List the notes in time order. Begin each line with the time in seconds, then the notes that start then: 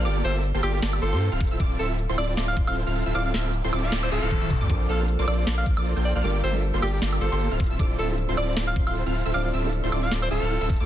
0.05 G1 A#3 F4 G4 A4 D5 D6, closed hi-hat
0.24 G1 A#3 F4 G4 A4 C5 E5 E6, closed hi-hat
0.44 closed hi-hat
0.54 G1 A#3 F4 G4 A4 C5 C6
0.63 G1 A#3 F4 G4 A4 D5 D6, closed hi-hat, high woodblock
0.68 closed hi-hat
0.74 G4, closed hi-hat
0.78 closed hi-hat
0.82 G1 A#3 F4 G4 A4 D5 D6, snare, closed hi-hat
0.93 high woodblock
1.02 G1 A#3 F4 G4 A4 C5 C6, closed hi-hat
1.12 G2 A#3 F4 G4 A4 C5 C6
1.21 closed hi-hat
1.32 D1 C4 E4 F4 A4 F5 F6, closed hi-hat
1.40 kick, closed hi-hat
1.44 closed hi-hat
1.47 closed hi-hat
1.51 D1 C4 E4 F4 A4 E5 E6
1.60 D1 C4 E4 F4 A4 D5 D6, kick, closed hi-hat
1.79 D1 C4 E4 F4 A4 E5 E6, closed hi-hat
1.99 closed hi-hat
2.09 D1 C4 E4 F4 A4 C5 C6
2.18 D1 C4 E4 F4 A4 D5 D6, closed hi-hat, high woodblock
2.23 closed hi-hat
2.29 D5, closed hi-hat
2.33 closed hi-hat
2.37 D1 C4 E4 F4 A4 D5 D6, snare, closed hi-hat
2.48 F5
2.57 D1 C4 E4 F4 A4 C5 C6, kick, closed hi-hat
2.67 D1 C4 E4 F4 A4 C5 F5 C6, high woodblock
2.76 closed hi-hat
2.87 D1 C4 E4 F4 A4 F5 F6, closed hi-hat
2.95 closed hi-hat
2.99 closed hi-hat
3.02 closed hi-hat
3.06 D1 C4 E4 F4 A4 E5 E6
3.15 D1 C4 E4 F4 A4 D5 F5 D6, closed hi-hat, noise sweep
3.26 F5
3.34 D1 C4 E4 F4 A4 E5 E6, snare, closed hi-hat
3.53 closed hi-hat
3.64 D1 C4 E4 F4 A4 C5 C6
3.73 D1 C4 E4 F4 A4 D5 D6, closed hi-hat, high woodblock
3.78 closed hi-hat
3.84 F5, closed hi-hat
3.88 closed hi-hat
3.92 D1 C4 E4 F4 A4 D5 D6, snare, closed hi-hat
4.03 C5, high woodblock
4.11 D1 C4 E4 F4 A4 E5 E6, closed hi-hat
4.22 D1 C4 E4 F4 A4 F5 F6
4.31 kick, closed hi-hat, high tom
4.42 D1 C4 E4 F4 A4 E5 E6, closed hi-hat, high tom
4.50 kick, closed hi-hat, mid tom
4.54 closed hi-hat
4.57 closed hi-hat
4.61 D2 C4 E4 F4 A4 D5 D6, mid tom
4.68 A#1 F3 A#3 C4 D4 F4 A4 C5 D5 D6, kick, closed hi-hat
4.89 A#1 A#3 F4 A4 C5 F5 F6, closed hi-hat
4.98 F3 A#3 C4 D4
5.02 A4
5.08 closed hi-hat
5.19 A#1 A#3 F4 A4 C5 D5 D6
5.27 A#1 A#3 F4 A4 C5 D5 D6, closed hi-hat, high woodblock
5.33 closed hi-hat
5.38 D5, closed hi-hat
5.43 closed hi-hat
5.47 A#1 A#3 F4 A4 C5 D5 D6, snare, closed hi-hat
5.58 F5
5.66 A#1 A#3 F4 A4 C5 D5 D6, kick, closed hi-hat
5.77 A#1 A#3 F4 A4 C5 D5 D6, high woodblock
5.86 closed hi-hat
5.96 A#1 A#3 F4 A4 C5 G5 G6, closed hi-hat
6.05 D5, closed hi-hat
6.09 closed hi-hat
6.11 closed hi-hat
6.16 A#1 A#3 F4 A4 C5 D5 F5 F6
6.23 G1 G3 A#3 D4 F4 G4 A4 A#4 D5 D6, closed hi-hat
6.44 G1 A#3 F4 G4 A4 C5 E5 E6, closed hi-hat
6.53 G3 A#3 D4 F4
6.57 A4
6.63 closed hi-hat
6.74 G1 A#3 F4 G4 A4 C5 C6
6.82 G1 A#3 F4 G4 A4 D5 D6, closed hi-hat, high woodblock
6.88 closed hi-hat
6.93 G4, closed hi-hat
6.98 closed hi-hat
7.02 G1 A#3 F4 G4 A4 D5 D6, snare, closed hi-hat
7.13 high woodblock
7.21 G1 A#3 F4 G4 A4 C5 C6, closed hi-hat
7.32 G1 A#3 F4 G4 A4 C5 C6
7.40 closed hi-hat
7.51 D1 C4 E4 F4 A4 F5 F6, closed hi-hat
7.60 kick, closed hi-hat
7.63 closed hi-hat
7.66 closed hi-hat
7.71 D1 C4 E4 F4 A4 E5 E6
7.78 D1 F3 C4 D4 E4 F4 A4 D5 D6, kick, closed hi-hat
7.99 D1 C4 E4 F4 A4 E5 E6, closed hi-hat
8.07 F3 C4 D4 E4 A4
8.18 closed hi-hat
8.29 D1 C4 E4 F4 A4 C5 C6
8.37 D1 C4 E4 F4 A4 D5 D6, closed hi-hat, high woodblock
8.43 closed hi-hat
8.48 D5, closed hi-hat
8.52 closed hi-hat
8.57 D1 C4 E4 F4 A4 D5 D6, snare, closed hi-hat
8.67 F5
8.76 D1 C4 E4 F4 A4 C5 C6, kick, closed hi-hat
8.87 D1 C4 E4 F4 A4 C5 F5 C6, high woodblock
8.95 closed hi-hat
9.06 D1 C4 E4 F4 A4 F5 F6, closed hi-hat
9.15 closed hi-hat
9.18 closed hi-hat
9.21 closed hi-hat
9.26 D1 C4 E4 F4 A4 E5 E6
9.33 D1 F3 C4 D4 E4 F4 A4 C5 D5 F5 D6, closed hi-hat
9.45 F5
9.53 D1 C4 E4 F4 A4 E5 E6, closed hi-hat
9.62 F3 C4 D4 E4
9.66 A4
9.73 closed hi-hat
9.84 D1 C4 E4 F4 A4 C5 C6
9.92 D1 C4 E4 F4 A4 D5 D6, closed hi-hat, high woodblock
9.97 closed hi-hat
10.03 F5, closed hi-hat
10.07 closed hi-hat
10.11 D1 C4 E4 F4 A4 D5 D6, snare, closed hi-hat
10.22 C5, high woodblock
10.31 D1 C4 E4 F4 A4 E5 E6, closed hi-hat
10.42 D1 C4 E4 F4 A4 F5 F6
10.50 closed hi-hat
10.61 D1 C4 E4 F4 A4 E5 E6, closed hi-hat
10.69 kick, closed hi-hat
10.73 closed hi-hat
10.76 closed hi-hat
10.80 D2 C4 E4 F4 A4 D5 D6